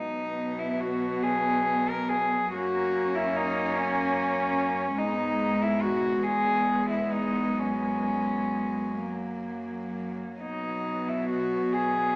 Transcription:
0.00 2.47 B2 soft
0.00 2.52 F#3 soft
0.00 2.53 B3 soft
0.00 0.60 D#4 medium
0.59 0.82 E4 soft
0.80 1.24 F#4 medium
1.23 1.91 G#4 medium
1.89 2.11 A#4 medium
2.09 2.51 G#4 medium
2.50 4.94 F#2 soft
2.50 4.97 A#3 soft
2.50 4.99 C#4 soft
2.50 3.16 F#4 medium
3.15 3.37 E4 medium
3.36 3.78 D#4 medium
3.77 5.00 C#4 medium
4.97 6.21 G#2 soft
4.97 9.00 G#3 soft
4.97 8.97 B3 soft
4.97 5.63 D#4 medium
5.62 5.83 E4 medium
5.81 6.25 F#4 medium
6.23 7.56 E2 soft
6.23 6.89 G#4 medium
6.90 7.14 E4 soft
7.13 7.61 D#4 soft
7.59 10.16 F#2 soft
7.59 8.99 C#4 soft
8.97 12.16 F#3 soft
8.97 10.17 A#3 soft
10.40 12.16 B2 soft
10.40 12.16 B3 soft
10.40 11.10 D#4 medium
11.08 11.29 E4 soft
11.30 11.74 F#4 soft
11.72 12.16 G#4 medium

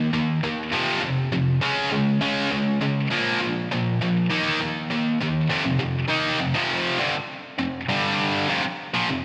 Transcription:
0.13 0.40 D#3 medium
0.13 0.40 A#3 medium
0.43 0.70 D#3 medium
0.43 0.70 A#3 medium
0.72 1.00 F2 medium
0.72 1.01 C3 loud
0.72 1.01 F3 loud
1.02 1.29 F2 medium
1.02 1.29 C3 medium
1.32 1.59 F2 medium
1.32 1.59 C3 medium
1.61 1.90 C#3 loud
1.61 1.90 G#3 loud
1.61 1.90 C#4 loud
1.91 2.18 C#3 medium
1.91 2.19 G#3 medium
2.21 2.49 C#3 loud
2.21 2.50 G#3 loud
2.21 2.50 C#4 loud
2.52 2.79 C#3 medium
2.52 2.78 G#3 medium
2.82 3.08 C#3 medium
2.82 3.09 G#3 medium
3.11 3.39 A#2 medium
3.11 3.40 F3 medium
3.11 3.40 A#3 medium
3.41 3.68 A#2 medium
3.41 3.68 F3 medium
3.71 3.98 A#2 medium
3.71 3.98 F3 medium
4.01 4.28 A#2 medium
4.01 4.28 F3 medium
4.30 4.58 D#3 medium
4.30 4.59 A#3 medium
4.30 4.59 D#4 medium
4.60 4.87 D#3 medium
4.60 4.87 A#3 medium
4.90 5.17 D#3 medium
4.90 5.18 A#3 medium
5.21 5.47 D#3 medium
5.21 5.48 A#3 medium
5.50 5.63 F2 medium
5.50 5.64 C3 loud
5.65 5.78 F2 medium
5.65 5.79 C3 medium
5.79 6.04 F2 medium
5.79 6.04 C3 medium
6.08 6.38 D#3 medium
6.08 6.39 A#3 medium
6.08 6.39 D#4 loud
6.40 6.53 F2 medium
6.40 6.54 C3 medium
6.54 6.98 F2 loud
6.54 6.99 C3 loud
6.54 6.99 F3 loud
6.99 7.13 G2 loud
6.99 7.13 D3 loud
7.58 7.83 F2 medium
7.58 7.83 C3 medium
7.89 8.48 G2 loud
7.89 8.48 D3 medium
7.89 8.48 G3 loud
8.49 8.63 F2 loud
8.49 8.63 C3 medium
8.64 muted distorted electric guitar stroke medium
8.94 9.08 A#2 loud
8.94 9.08 F3 loud
9.09 9.23 F2 medium
9.09 9.24 C3 medium

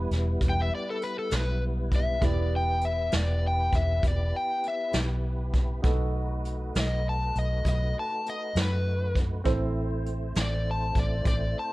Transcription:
0.00 2.19 G3 medium
0.00 2.17 B3 medium
0.00 2.20 B3 medium
0.00 2.17 E4 soft
0.00 2.20 E4 medium
0.00 2.18 G4 soft
0.00 2.18 B4 medium
0.00 2.20 B4 medium
0.11 0.39 E1 medium
0.11 snare soft
0.11 closed hi-hat soft
0.41 0.69 E1 medium
0.41 kick medium
0.41 closed hi-hat medium
0.49 0.60 G5 medium
0.62 0.74 E5 medium
0.75 0.88 D5 medium
0.90 1.03 A4 medium
1.02 1.17 B4 medium
1.02 closed hi-hat medium
1.19 1.32 A4 medium
1.31 2.18 B1 medium
1.31 snare loud
1.31 closed hi-hat medium
1.35 1.63 B4 medium
1.92 2.23 E5 medium
1.92 kick medium
1.92 closed hi-hat medium
2.21 3.08 E1 medium
2.21 5.80 B3 soft
2.21 5.81 B3 medium
2.21 5.80 E4 soft
2.21 5.81 E4 medium
2.21 5.80 G4 soft
2.21 5.81 G4 medium
2.21 5.80 B4 soft
2.21 5.81 B4 medium
2.21 2.53 D5 medium
2.21 kick medium
2.21 closed hi-hat medium
2.56 2.84 G5 medium
2.81 3.13 E5 medium
2.81 closed hi-hat medium
3.12 3.69 E1 medium
3.12 snare medium
3.12 closed hi-hat medium
3.17 3.44 D5 medium
3.47 3.75 G5 medium
3.73 4.01 E1 medium
3.73 4.03 E5 medium
3.73 kick medium
3.73 closed hi-hat medium
4.03 4.31 E1 medium
4.03 kick medium
4.03 closed hi-hat medium
4.08 4.35 D5 medium
4.36 4.64 G5 medium
4.63 closed hi-hat soft
4.68 4.95 E5 medium
4.93 5.80 B1 medium
4.93 snare medium
4.93 closed hi-hat medium
5.54 kick medium
5.54 closed hi-hat soft
5.82 6.70 B1 medium
5.82 9.42 A3 medium
5.82 9.41 D#4 medium
5.82 9.42 D#4 medium
5.82 9.41 F#4 soft
5.82 9.42 F#4 medium
5.82 9.42 A4 soft
5.82 9.42 B4 medium
5.82 kick medium
5.82 closed hi-hat medium
6.45 closed hi-hat medium
6.75 7.31 B1 medium
6.75 snare loud
6.75 closed hi-hat medium
6.80 7.06 D#5 medium
7.09 7.36 A5 medium
7.35 7.63 B1 medium
7.35 7.66 D#5 medium
7.35 closed hi-hat medium
7.65 7.93 B1 medium
7.65 kick medium
7.65 closed hi-hat medium
7.69 7.96 D#5 medium
7.99 8.27 A5 medium
8.26 8.57 D#5 medium
8.26 closed hi-hat medium
8.55 9.42 F#2 medium
8.55 snare medium
8.55 closed hi-hat medium
8.61 9.17 B4 medium
9.15 kick medium
9.15 closed hi-hat medium
9.44 10.32 A1 medium
9.44 11.73 A3 medium
9.44 11.73 C4 medium
9.44 11.73 E4 medium
9.44 11.73 A4 medium
9.44 11.73 C5 medium
9.44 kick medium
9.44 closed hi-hat medium
10.06 closed hi-hat medium
10.35 10.92 A1 medium
10.35 snare medium
10.35 closed hi-hat medium
10.41 10.68 D5 medium
10.71 10.98 A5 medium
10.95 11.24 A1 medium
10.95 kick medium
10.95 closed hi-hat medium
10.99 11.27 D5 medium
11.25 11.53 A1 medium
11.25 11.56 D5 medium
11.25 kick medium
11.25 closed hi-hat medium
11.59 11.73 A5 medium

